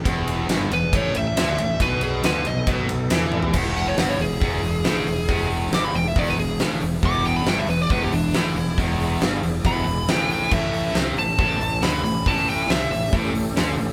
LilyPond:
<<
  \new Staff \with { instrumentName = "Lead electric guitar" } { \time 4/4 \key e \mixolydian \tempo 4 = 138 r4. b'8 cis''8 e''4. | b'8 gis'8 b'8 dis''8 r2 | r8 fis''16 cis''16 fis''16 cis''16 gis'2~ gis'8~ | gis'8 r8 d'''16 b''16 g''16 e''16 d''16 b'16 gis'8 r4 |
d'''8 g''16 b''16 g''16 e''16 b'16 d''16 b'16 g'16 d'8 e'4 | r2 b''4 g''8 g''8 | e''4 r8 a''4. b''8 b''8 | a''8 g''8 e''4 r2 | }
  \new Staff \with { instrumentName = "Tonewheel organ" } { \time 4/4 \key e \mixolydian << { <d' e' gis'>2 <cis' g' a'>2 | <b dis' a'>1 | \tuplet 3/2 { <dis' f' a'>8 <d' e' gis'>4~ } <d' e' gis'>2.~ | <d' e' gis'>1 |
<e' gis' d''>1~ | <e' gis' d''>1 | <cis' g' a'>1~ | <cis' g' a'>1 | } \\ { r1 | r1 | <a b c' d' e' f' g' a' b' c'' d''>8 r2. r8 | r1 |
r1 | r1 | r1 | r1 | } >> }
  \new Staff \with { instrumentName = "Distorted electric guitar" } { \clef bass \time 4/4 \key e \mixolydian e,4 g,8 e,8 a,8 a,8 d8 a,8 | b,4 d8 b,8 b,8 b,8 e4 | e,4 g,8 e,8 e,8 e,8 a,8 e,8 | e,4 g,8 e,8 e,8 e,8 a,8 e,8 |
e,4 g,8 e,8 e,8 e,8 a,8 e,8 | e,4 g,8 e,8 e,8 e,8 a,4 | a,4 c8 a,8 a,8 a,8 d8 a,8 | a,4 c8 a,8 a,8 a,8 d8 a,8 | }
  \new Staff \with { instrumentName = "Fingered electric bass" } { \clef bass \time 4/4 \key e \mixolydian e,,4 g,,8 e,,8 a,,8 a,,8 d,8 a,,8 | b,,4 d,8 b,,8 b,,8 b,,8 e,4 | e,,4 g,,8 e,,8 e,,8 e,,8 a,,8 e,,8 | e,,4 g,,8 e,,8 e,,8 e,,8 a,,8 e,,8 |
e,,4 g,,8 e,,8 e,,8 e,,8 a,,8 e,,8 | e,,4 g,,8 e,,8 e,,8 e,,8 a,,4 | a,,4 c,8 a,,8 a,,8 a,,8 d,8 a,,8 | a,,4 c,8 a,,8 a,,8 a,,8 d,8 a,,8 | }
  \new DrumStaff \with { instrumentName = "Drums" } \drummode { \time 4/4 <bd cymr>8 cymr8 <cymr sn>8 cymr8 <bd cymr>8 cymr8 <cymr sn>8 cymr8 | <bd cymr>8 cymr8 <cymr sn>8 cymr8 <bd cymr>8 cymr8 <cymr sn>8 tommh16 tomfh16 | <cymc bd>8 hho8 <hho sn>8 hho8 <hho bd>8 hho8 <hho sn>8 hho8 | <hho bd>8 hho8 <hho sn>8 hho8 <hho bd>8 hho8 <hho sn>8 hho8 |
<hho bd>8 hho8 <hho sn>8 hho8 <hho bd>8 hho8 <hho sn>8 hho8 | <hho bd>8 hho8 <hho sn>8 hho8 <hho bd>8 hho8 <hho sn>8 hho8 | <cymc bd>8 hho8 <hho sn>8 hho8 <hho bd>8 hho8 <hho sn>8 hho8 | <hho bd>8 hho8 <hho sn>8 hho8 <hho bd>8 hho8 <hho sn>8 hho8 | }
>>